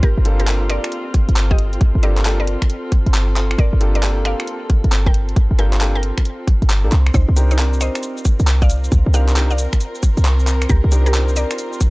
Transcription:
Already playing: C4 F4
0.03 G1 G4 A#4, kick, closed hi-hat
0.17 G1
0.25 A#3 D4 F4 G4 A4, open hi-hat
0.40 G4 A#4, closed hi-hat
0.47 A#3 D4 F4 G4 A4, clap, closed hi-hat
0.70 A#4 D5, finger snap, open hi-hat
0.84 finger snap, closed hi-hat
0.92 closed hi-hat
1.14 kick, open hi-hat
1.22 A4
1.29 G1, closed hi-hat
1.36 clap, closed hi-hat
1.51 G4 D#5, kick
1.58 open hi-hat
1.73 closed hi-hat
1.81 G1, kick, closed hi-hat
1.95 G1
2.03 A#3 D4 F4 G4 A4 A#4 D5, open hi-hat
2.17 clap, closed hi-hat
2.25 A#3 D4 F4 G4 A4, clap, closed hi-hat
2.40 A#4 D5
2.47 open hi-hat
2.62 finger snap, kick, closed hi-hat
2.70 closed hi-hat
2.92 kick, open hi-hat
3.06 G1, closed hi-hat
3.14 clap, closed hi-hat
3.36 clap, open hi-hat
3.51 finger snap, closed hi-hat
3.58 G1 A#4 D5, kick, closed hi-hat
3.73 G1
3.81 A#3 D4 F4 G4 A4, open hi-hat
3.95 A#4 D5, closed hi-hat
4.03 A#3 D4 F4 G4 A4, clap, closed hi-hat
4.25 D5 F5, finger snap, open hi-hat
4.40 finger snap, closed hi-hat
4.47 closed hi-hat
4.70 kick, open hi-hat
4.84 G1, closed hi-hat
4.92 clap, closed hi-hat
5.06 A#4 G5, kick
5.14 open hi-hat
5.29 closed hi-hat
5.36 G1, kick, closed hi-hat
5.51 G1
5.59 A#3 D4 F4 G4 A4 A#4 G5, open hi-hat
5.73 clap, closed hi-hat
5.81 A#3 D4 F4 G4 A4, clap, closed hi-hat
5.95 A#4 G5
6.03 open hi-hat
6.18 finger snap, kick, closed hi-hat
6.25 closed hi-hat
6.47 kick, open hi-hat
6.62 G1, closed hi-hat
6.70 clap, closed hi-hat
6.84 A#1 A#3 D4 F4 G4 A4
6.92 C2 C4, clap, open hi-hat
7.07 finger snap, closed hi-hat
7.11 C2 D#4 F4 C5, kick, closed hi-hat, shaker
7.29 C2
7.36 C4 D4 D#4 G4 A#4, open hi-hat, shaker
7.51 D#4 C5, closed hi-hat, shaker
7.59 C4 D4 D#4 G4 A#4, clap, closed hi-hat, shaker
7.73 shaker
7.81 C5 D#5, finger snap, open hi-hat, shaker
7.95 finger snap, closed hi-hat, shaker
8.03 closed hi-hat, shaker
8.17 A#4, shaker
8.25 kick, open hi-hat, shaker
8.40 C2, closed hi-hat, shaker
8.47 clap, closed hi-hat, shaker
8.62 D5 F5, kick, shaker
8.70 open hi-hat, shaker
8.84 closed hi-hat, shaker
8.92 C2, kick, closed hi-hat, shaker
9.06 C2
9.14 C4 D4 D#4 G4 A#4 D5 F5, open hi-hat, shaker
9.29 clap, closed hi-hat, shaker
9.36 C4 D4 D#4 G4 A#4, clap, closed hi-hat, shaker
9.51 D5 F5, shaker
9.58 open hi-hat, shaker
9.73 finger snap, kick, closed hi-hat, shaker
9.81 closed hi-hat, shaker
9.95 shaker
10.03 kick, open hi-hat, shaker
10.17 C2, closed hi-hat, shaker
10.25 clap, closed hi-hat, shaker
10.39 shaker
10.47 clap, open hi-hat, shaker
10.62 finger snap, closed hi-hat, shaker
10.69 C2 G4 A#4, kick, closed hi-hat, shaker
10.84 C2
10.92 C4 D4 D#4 G4 A#4, open hi-hat, shaker
11.06 G4 A#4, closed hi-hat, shaker
11.14 C4 D4 D#4 G4 A#4, clap, closed hi-hat, shaker
11.29 shaker
11.36 A#4 D5, open hi-hat, shaker
11.51 finger snap, closed hi-hat, shaker
11.58 closed hi-hat, shaker
11.73 shaker
11.81 kick, open hi-hat, shaker

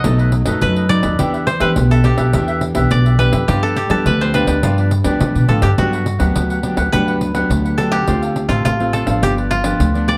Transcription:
Already playing: D#5
0.04 B1 B2 F#3 A3 D#4 A4 B4 D#5, pandeiro
0.18 A4 B4 D#5, pandeiro
0.32 muted cavaquinho stroke, pandeiro
0.45 F#2 F#3 A3 D#4 A4 B4 D#5, pandeiro
0.61 F#2 B4, pandeiro
0.76 A4 B4 D#5, pandeiro
0.89 F#3 A3 D#4 A4 B4 D5 D#5, pandeiro
1.03 D#2 A4 B4 D#5, pandeiro
1.18 E2 E3 B3 D4 G4 B4 E5, pandeiro
1.33 G4 B4 E5, pandeiro
1.47 C5, muted cavaquinho stroke, pandeiro
1.60 E3 B3 D4 G4 B4 E5, pandeiro
1.76 B1 B2, pandeiro
1.91 G4 A4 B4 E5, pandeiro
2.04 B3 D4 G4 B4 E5, pandeiro
2.17 B1 G4 B4 E5, pandeiro
2.33 E2 E3 B3 D4 G4 B4 E5, pandeiro
2.48 G4 B4 E5, pandeiro
2.61 muted cavaquinho stroke, pandeiro
2.75 B1 B3 D4 G4 B4 E5, pandeiro
2.91 B1 B2 D5, pandeiro
3.05 G4 B4 E5, pandeiro
3.19 B3 D4 G4 B4 E5, pandeiro
3.32 F2 G4 B4 E5, pandeiro
3.48 G2 F3 B3 D4 F4 G4 B4 D5, pandeiro
3.63 G4 A4 B4 D5, pandeiro
3.76 G4, muted cavaquinho stroke, pandeiro
3.89 F3 G3 B3 D4 G4 A4 B4 D5, pandeiro
4.05 D2 D3 B4, pandeiro
4.21 G4 B4 C5 D5, pandeiro
4.33 F3 B3 D4 F4 G4 B4 D5, pandeiro
4.47 D2 G4 B4 D5, pandeiro
4.63 G2 F3 B3 D4 F4 G4 B4 D5, pandeiro
4.78 G4 B4 D5, pandeiro
4.91 muted cavaquinho stroke, pandeiro
5.04 D2 F3 B3 D4 G4 B4 D5, pandeiro
5.21 D3, pandeiro
5.35 B2 G4 B4 D5, pandeiro
5.48 A2 F3 B3 D4 F4 G4 A4 B4 D5, pandeiro
5.62 G2 G4 B4 D5, pandeiro
5.78 G2 F#3 B3 D4 F#4 G4 B4 F#5, pandeiro
5.93 G4 B4 F#5, pandeiro
6.06 muted cavaquinho stroke, pandeiro
6.19 D2 F#3 B3 D4 G4 B4 F#5, pandeiro
6.35 D2 D3, pandeiro
6.49 G4 B4 F#5, pandeiro
6.63 F#3 B3 D4 G4 B4 F#5, pandeiro
6.76 D2 G4 B4 F#5, pandeiro
6.92 D2 G2 F#3 B3 D4 G4 B4 F#5, pandeiro
7.08 G4 B4 F#5, pandeiro
7.21 muted cavaquinho stroke, pandeiro
7.34 F#3 B3 D4 G4 B4 F#5, pandeiro
7.50 D2 D3, pandeiro
7.65 G4 B4 F#5, pandeiro
7.78 F#3 B3 D4 G4 A4 B4 F#5, pandeiro
7.92 G4 B4 F#5, pandeiro
8.07 D2 D3 A3 C4 D4 F4 A4 C5 F5, pandeiro
8.22 A4 C5 F5, pandeiro
8.35 muted cavaquinho stroke, pandeiro
8.48 A1 A3 C4 F4 A4 C5 F5, pandeiro
8.65 A1 A2 F4, pandeiro
8.80 A3 C4 F4 A4 C5 F5, pandeiro
8.93 D4 A4 C5 F5, pandeiro
9.06 A1 F3 B3 D4 A4 C5 F5, pandeiro
9.22 G1 G2 F4 G4 B4 D5, pandeiro
9.37 G4 B4 D5, pandeiro
9.50 F4, muted cavaquinho stroke, pandeiro
9.64 F3 B3 D4 G4 B4 D5, pandeiro
9.80 D2 D3, pandeiro
9.94 F3 B3 D4 G4 B4 D5, pandeiro
10.08 F4 G4 B4 D5, pandeiro

